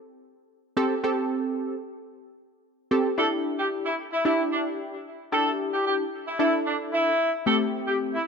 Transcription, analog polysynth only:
0, 0, Header, 1, 2, 480
1, 0, Start_track
1, 0, Key_signature, 1, "minor"
1, 0, Tempo, 535714
1, 930, Time_signature, 4, 2, 24, 8
1, 7413, End_track
2, 0, Start_track
2, 0, Title_t, "Analog polysynth"
2, 0, Program_c, 0, 90
2, 686, Note_on_c, 0, 60, 94
2, 688, Note_on_c, 0, 67, 81
2, 690, Note_on_c, 0, 69, 104
2, 848, Note_off_c, 0, 60, 0
2, 849, Note_off_c, 0, 67, 0
2, 849, Note_off_c, 0, 69, 0
2, 928, Note_on_c, 0, 60, 85
2, 930, Note_on_c, 0, 67, 79
2, 933, Note_on_c, 0, 69, 93
2, 1566, Note_off_c, 0, 60, 0
2, 1567, Note_off_c, 0, 67, 0
2, 1569, Note_off_c, 0, 69, 0
2, 2607, Note_on_c, 0, 60, 89
2, 2609, Note_on_c, 0, 67, 83
2, 2611, Note_on_c, 0, 69, 96
2, 2768, Note_off_c, 0, 60, 0
2, 2769, Note_off_c, 0, 67, 0
2, 2770, Note_off_c, 0, 69, 0
2, 2847, Note_on_c, 0, 62, 78
2, 2848, Note_on_c, 0, 64, 68
2, 2851, Note_on_c, 0, 67, 78
2, 3485, Note_off_c, 0, 62, 0
2, 3486, Note_off_c, 0, 64, 0
2, 3488, Note_off_c, 0, 67, 0
2, 3808, Note_on_c, 0, 62, 76
2, 3810, Note_on_c, 0, 64, 73
2, 3813, Note_on_c, 0, 67, 80
2, 4446, Note_off_c, 0, 62, 0
2, 4447, Note_off_c, 0, 64, 0
2, 4448, Note_off_c, 0, 67, 0
2, 4769, Note_on_c, 0, 62, 72
2, 4770, Note_on_c, 0, 64, 70
2, 4772, Note_on_c, 0, 67, 82
2, 5406, Note_off_c, 0, 62, 0
2, 5407, Note_off_c, 0, 64, 0
2, 5408, Note_off_c, 0, 67, 0
2, 5727, Note_on_c, 0, 62, 77
2, 5729, Note_on_c, 0, 64, 71
2, 5731, Note_on_c, 0, 69, 84
2, 6366, Note_off_c, 0, 62, 0
2, 6367, Note_off_c, 0, 64, 0
2, 6368, Note_off_c, 0, 69, 0
2, 6686, Note_on_c, 0, 57, 75
2, 6688, Note_on_c, 0, 60, 67
2, 6690, Note_on_c, 0, 67, 81
2, 7325, Note_off_c, 0, 57, 0
2, 7326, Note_off_c, 0, 60, 0
2, 7327, Note_off_c, 0, 67, 0
2, 7413, End_track
0, 0, End_of_file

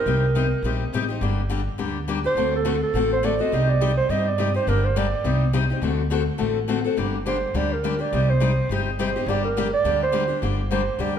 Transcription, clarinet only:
0, 0, Header, 1, 2, 480
1, 0, Start_track
1, 0, Key_signature, -2, "minor"
1, 0, Tempo, 287770
1, 88, Time_signature, 4, 2, 24, 8
1, 18663, End_track
2, 0, Start_track
2, 0, Title_t, "Clarinet"
2, 0, Program_c, 0, 71
2, 0, Note_on_c, 0, 70, 83
2, 1296, Note_off_c, 0, 70, 0
2, 3774, Note_on_c, 0, 72, 91
2, 4200, Note_off_c, 0, 72, 0
2, 4270, Note_on_c, 0, 69, 76
2, 4689, Note_off_c, 0, 69, 0
2, 4723, Note_on_c, 0, 69, 90
2, 5155, Note_off_c, 0, 69, 0
2, 5220, Note_on_c, 0, 72, 93
2, 5418, Note_on_c, 0, 74, 87
2, 5443, Note_off_c, 0, 72, 0
2, 5690, Note_on_c, 0, 75, 101
2, 5715, Note_off_c, 0, 74, 0
2, 6166, Note_on_c, 0, 74, 90
2, 6191, Note_off_c, 0, 75, 0
2, 6620, Note_off_c, 0, 74, 0
2, 6630, Note_on_c, 0, 72, 93
2, 6846, Note_on_c, 0, 75, 81
2, 6871, Note_off_c, 0, 72, 0
2, 7148, Note_on_c, 0, 74, 90
2, 7173, Note_off_c, 0, 75, 0
2, 7593, Note_off_c, 0, 74, 0
2, 7603, Note_on_c, 0, 72, 81
2, 7821, Note_on_c, 0, 70, 83
2, 7846, Note_off_c, 0, 72, 0
2, 8093, Note_on_c, 0, 72, 81
2, 8118, Note_off_c, 0, 70, 0
2, 8303, Note_on_c, 0, 74, 86
2, 8328, Note_off_c, 0, 72, 0
2, 9245, Note_off_c, 0, 74, 0
2, 12135, Note_on_c, 0, 72, 82
2, 12614, Note_on_c, 0, 74, 74
2, 12639, Note_off_c, 0, 72, 0
2, 12892, Note_on_c, 0, 70, 70
2, 12917, Note_off_c, 0, 74, 0
2, 13361, Note_on_c, 0, 74, 84
2, 13386, Note_off_c, 0, 70, 0
2, 13840, Note_on_c, 0, 72, 88
2, 13865, Note_off_c, 0, 74, 0
2, 14514, Note_off_c, 0, 72, 0
2, 15014, Note_on_c, 0, 72, 77
2, 15492, Note_on_c, 0, 74, 97
2, 15517, Note_off_c, 0, 72, 0
2, 15745, Note_off_c, 0, 74, 0
2, 15757, Note_on_c, 0, 70, 71
2, 16189, Note_off_c, 0, 70, 0
2, 16238, Note_on_c, 0, 74, 102
2, 16669, Note_off_c, 0, 74, 0
2, 16735, Note_on_c, 0, 72, 87
2, 17351, Note_off_c, 0, 72, 0
2, 17881, Note_on_c, 0, 72, 71
2, 18355, Note_on_c, 0, 74, 77
2, 18380, Note_off_c, 0, 72, 0
2, 18612, Note_off_c, 0, 74, 0
2, 18663, End_track
0, 0, End_of_file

